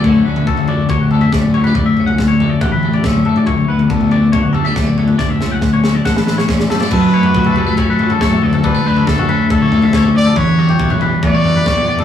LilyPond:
<<
  \new Staff \with { instrumentName = "Clean electric guitar" } { \time 4/4 \key d \major \tempo 4 = 139 cis''8 b'8 a'8 d''8 cis''16 fis'16 a'16 e''16 d''8 cis''16 b'16 | d''16 e''8 fis''8 cis''8 d''16 fis''16 b'8 d''16 e''8 a'16 d''16 | cis''8 b'8 a'8 d''8 cis''16 fis'16 a'16 e''16 d''8 cis''16 b'16 | d''16 e''8 fis''8 cis''8 d''16 fis''16 b'8 cis''16 d''8 a'16 d''16 |
a'8 cis''16 fis'8 a'16 a'8 cis''16 b'8 a'16 cis''8 d''16 a'16 | a'8 b'16 a'8 fis'16 b'8 a'16 cis''8 e''16 cis''8 d''16 a'16 | b'8 d''16 g'8 b'16 b'8 d''16 cis''8 b'16 cis''8 d''16 a'16 | }
  \new Staff \with { instrumentName = "Trumpet" } { \time 4/4 \key d \major r1 | r1 | r1 | r1 |
b'2 a'2 | b'4 a'4 a'4. d''8 | cis''4. r8 d''2 | }
  \new Staff \with { instrumentName = "Clean electric guitar" } { \time 4/4 \key d \major << { <d a cis' fis'>8 cis'4 a8 g'8 a8 cis'8 g16 a16 | r8 cis'4 a8 g'8 a8 cis'8 a8 | r8 b4 a8 d'8 g16 a16 a16 b16 a8 | r8 cis'4 a8 a'8 a8 cis'8 g16 a16 |
r8 a4 g16 a16 cis'4 a8 r8 | g16 a8. a8 cis'4 a8 cis'8 r8 | r8 g4 g8 a16 b8. g8 b8 | } \\ { d,4. d4. a,4 | d,4. d4. a,4 | d,4. d4. d,4 | d,4. d4. a,4 |
fis,4 fis4. fis4 d,8~ | d,8 d4. d4. d,8 | e,4 e4. e4. | } >> }
  \new Staff \with { instrumentName = "Fingered electric bass" } { \clef bass \time 4/4 \key d \major d,8 d,8 d,4 d,4 d,4 | d,8 cis,8 d,4 a,,4 d,8 r8 | d,8 d,8 d,4 d,4 d,4 | d,8 cis,8 d,4 a,,4 e,8 fis,8 |
fis,4 cis,4 fis,4 fis,8 d,8~ | d,8 d,8 d,4 d,8 d,8 d,4 | e,4 b,,4 e,4 e,4 | }
  \new DrumStaff \with { instrumentName = "Drums" } \drummode { \time 4/4 <bd tomfh>8. toml16 bd16 tomfh16 <tomfh toml>8 <bd tomfh toml>8 tomfh16 tomfh16 <bd sn tomfh>8 tomfh16 tomfh16 | <bd tomfh>8 tomfh16 toml16 <bd sn>8 <tomfh toml>8 <bd tomfh toml>8 tomfh16 tomfh16 <bd sn tomfh>8 tomfh16 tomfh16 | <bd tomfh>8. toml16 bd16 tomfh16 <tomfh toml>8 <bd tomfh toml>8 tomfh16 tomfh16 <bd sn tomfh>8 tomfh16 tomfh16 | <bd sn>8 sn8 <bd sn>8 sn8 <bd sn>16 sn16 sn16 sn16 <bd sn>16 sn16 sn16 sn16 |
<cymc bd tomfh>8. tomfh16 <bd toml>16 tomfh16 tomfh8 <bd tomfh>8 tomfh16 tomfh16 <bd sn>16 tomfh8 <tomfh toml>16 | <bd tomfh>16 tomfh8 tomfh16 <bd sn toml>16 <tomfh toml>16 tomfh8 <bd tomfh>8 <tomfh toml>16 tomfh16 <bd sn>16 tomfh8 <tomfh toml>16 | <bd tomfh>8. tomfh16 <bd toml>16 tomfh16 tomfh8 <bd tomfh>8 tomfh16 tomfh16 <bd sn>16 tomfh8 <tomfh toml>16 | }
>>